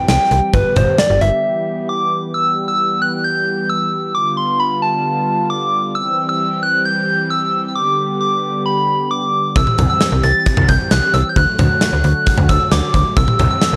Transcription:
Already playing: E3 G3 C4 G4
0.08 C2 G5, snare, closed hi-hat
0.31 C2, closed hi-hat
0.54 G1 D3 B3 G4 B4, kick, closed hi-hat
0.76 G1 C5, closed hi-hat, mid tom, cowbell
0.98 D5, snare, closed hi-hat
1.10 G1
1.21 G1 E5, closed hi-hat
1.44 E3 B3
1.89 D6
2.34 E3 G3 B3 G4 E6
2.68 E6
3.02 F#6
3.24 G6
3.70 E6
4.14 D3 G3 B3 F4 D6
4.37 C6
4.60 B5
4.82 A5
5.50 D6
5.95 E3 C4 G4 E6
6.29 E6
6.63 F#6
6.85 G6
7.30 E6
7.68 E6
7.75 D3 B3 D6
8.21 D6
8.66 B5
9.11 D6
9.56 C2 E3 C4 G4 E6, kick, closed hi-hat
9.67 mid tom
9.78 C2, closed hi-hat, mid tom
9.90 E6
10.01 snare, closed hi-hat
10.12 C2
10.23 C2 A6, closed hi-hat
10.46 kick, closed hi-hat
10.57 C2, mid tom
10.68 C2 G6, kick, closed hi-hat
10.91 C2 F#6, snare, closed hi-hat
11.14 C2 E6, closed hi-hat, cowbell
11.29 G6
11.36 D2 D3 F#3 A3 F#4 F#6, kick, closed hi-hat
11.59 D2, closed hi-hat, mid tom, cowbell
11.81 snare, closed hi-hat
11.93 D2
12.04 D2, closed hi-hat
12.26 kick, closed hi-hat
12.38 D2, mid tom
12.49 D2 E6, kick, closed hi-hat, cowbell
12.71 D2 D6, snare, closed hi-hat
12.94 D2, kick, closed hi-hat
13.17 C2 E3 G3 C4 G4 E6, kick, closed hi-hat
13.28 mid tom
13.39 C2, closed hi-hat, mid tom, cowbell
13.51 E6
13.62 snare, closed hi-hat
13.73 C2

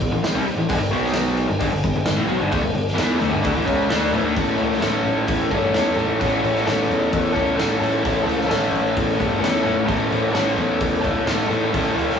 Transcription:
Already playing: A1
0.01 kick, crash
0.12 A1 A2 E3
0.23 muted picked electric bass stroke, muted overdriven electric guitar stroke, snare, crash
0.35 C2 C3 G3
0.45 muted picked electric bass stroke, muted overdriven electric guitar stroke, crash
0.55 A1 A2 E3
0.69 G1 G2 D3, kick, crash
0.79 G1 G2 D3
0.91 B1 B2 F#3 B3, crash
1.04 snare
1.14 snare, crash
1.37 crash
1.48 G1 G2 D3
1.59 G1 G2 D3, kick, crash
1.72 G1 G2 D3
1.83 G1 G2 D3, kick, crash
1.95 G1 G2 D3
2.05 G1 G2 D3, snare, crash
2.16 A1 A2 E3
2.27 B1 B2 F#3, crash
2.39 G1 G2 D3
2.51 D2 D3 A3, kick, crash
2.62 G1 G2 D3
2.73 G1 G2 D3, crash
2.88 snare
2.95 E3 B3 E4, snare, crash
2.99 E2
3.19 D2 D3 A3, crash
3.29 G1 G2 D3
3.42 D2 D3 A3, kick, crash
3.54 A1 A2 E3
3.65 C#2 C#3 G#3 C#4, kick, crash
3.89 D2 D3 A3 D4, snare, crash
4.12 A1 A2 E3, crash
4.23 D2 D3 A3
4.35 A1 A2 E3 A3 C#4 A4, kick, crash
4.56 C#2 A3 C#4 A4, crash
4.72 snare
4.79 A1 A2 E3 A3 C#4 A4, snare, crash
5.05 A1, crash
5.27 A2, kick, crash
5.50 G2 A3 C#4 A4, kick, crash
5.73 E2 E3 A3 C#4, snare, crash
5.77 A4
5.96 A1 A3 C#4 A4, crash
6.18 A1 A2 E3 A3 C#4, kick, crash
6.23 A4
6.41 A1 A3 C#4 A4, crash
6.55 snare
6.63 A2 E3 A3 C#4 A4
6.67 A1, snare, crash
6.89 E2, crash
7.13 E2, kick, crash
7.33 A3 C#4 A4, kick, crash
7.37 C#2
7.55 A1 E3 A3 C#4 A4
7.60 snare, crash
7.80 A2 A3 C#4 A4, crash
8.02 A1 A2 E3 A3 C#4 A4, kick, crash
8.24 C#2 A3 C#4 A4
8.29 crash
8.41 snare
8.46 A1 A2 E3 A3 C#4 A4
8.51 snare, crash
8.72 A1, crash
8.97 A2, kick, crash
9.16 G2 A3 C#4 A4, kick
9.21 crash
9.38 E2 E3 A3 C#4 A4
9.44 snare, crash
9.63 A1 A3 C#4 A4, crash
9.85 A1 A2 E3 A3 C#4 A4, kick, crash
10.10 A1 A3 C#4 A4, crash
10.30 A2 E3 A3 C#4 A4
10.35 A1, snare, crash
10.57 E2, crash
10.80 E2, kick, crash
11.01 C#2 A3 C#4 A4, kick, crash
11.26 A1 E3 A3 C#4 A4, snare, crash
11.47 A2 A3 C#4 A4, crash
11.71 A1 A2 E3 A3 C#4 A4, kick, crash
11.95 C#2 A3 C#4 A4, crash
12.10 snare

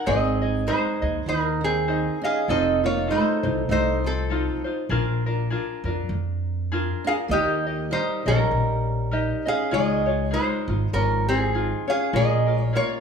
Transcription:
0.06 G#1 C4 D#4 G#4 C5 D#5
0.42 D#4 G#4 D#5
0.67 G#3 D#4 G#4 C5 D#5
1.02 D#2 D#4 G#4 D#5
1.26 D#2 D#3 D#4 A#4
1.61 D#3 G#4
1.65 C4
1.88 D#4 G#4 C5 D#5
2.21 C#4 G#4 D#5 F5
2.26 D#4
2.48 F1 C4 D#4 F4 A4 C5 D#5
2.83 A#3 D#4 F4 C#5
3.07 A3 D#4 F4 A4 C5
3.12 C5
3.43 C2 D#4 F4 C5
3.69 C2 A3 D#4 C5
4.04 F3 C4 A4
4.30 D#4 F4 A4 C5
4.64 D#4 F4 C5
4.89 A#1 D4 F4 G#4 A#4
5.26 D4 F4 A#4
5.50 D4 F4 G#4 A#4
5.84 F2 D4 F4 A#4
6.09 F2
6.72 D4 F4 G#4 A#4
7.04 D4 F4 G#4 A#4 F5
7.09 D4
7.28 D#2 A#3 A#4 D#5
7.33 D#4 G4 D#5
7.66 D#4 G4 D#5
7.91 G3 D#4 G4 A#4 C5 D#5
8.26 A#1 G3 C#4 D#4 G4 A#4 D#5
8.51 A#1
9.11 D#4 G4 A#4 D#5
9.46 C#4 D#4 G#4 D#5 F5
9.71 C#2 G#3 D#4 F4 G#4 C#5 D#5
10.06 D#4 F4 C#5
10.31 G#3 D#4 F4 G#4 C5
10.68 G#1 D#4 F4
10.93 G#1 F3 C#4 A#4
11.29 F3 C4 G#4
11.54 D#4 F4 G#4
11.87 C#4 D#4 F4 G#4 C#5 F5
12.13 A#1 A#3 C#4 F4 G#4 A#4 D#5
12.46 C#4 F4 A#4
12.56 G#3
12.63 C#5
12.73 A#3 C#4 F4 G#4 A#4 C#5

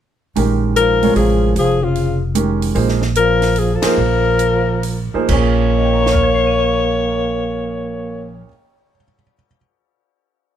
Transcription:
0.36 A#1 D#3 G#3 C#4 G4 A#4, open hi-hat
0.76 F3 A#4, closed hi-hat
1.03 C3 G#3 F4 A#4 C#5, open hi-hat
1.16 A1 F3 G#4, open hi-hat
1.56 F1 F3 G#4, open hi-hat
1.83 C#3 F4
1.96 open hi-hat
2.35 D#3 G#3 C#4 G4 A#4, closed hi-hat
2.62 open hi-hat
2.74 A#1 F3 A#3 D#4 G#4 C5, open hi-hat
2.88 snare
3.02 snare
3.15 F3 A#4, closed hi-hat
3.42 snare, open hi-hat
3.56 F3 G#4, open hi-hat
3.73 F3 A4
3.82 F3 A#3 D#4 G#4 C5, muted upright bass stroke, snare, ride
3.87 A#4
3.98 A#1
4.39 closed hi-hat
4.83 open hi-hat
5.14 F3 A#3 D#4 G#4 C5, muted upright bass stroke
5.29 A#1 A#2 A#3 C#4 G#4 C#5, kick, crash
5.33 C#5
5.78 D#5
5.85 G5
5.93 A#5
6.02 C#6, snare
6.12 F6, kick
6.23 G#6
6.34 C7
6.47 D#7

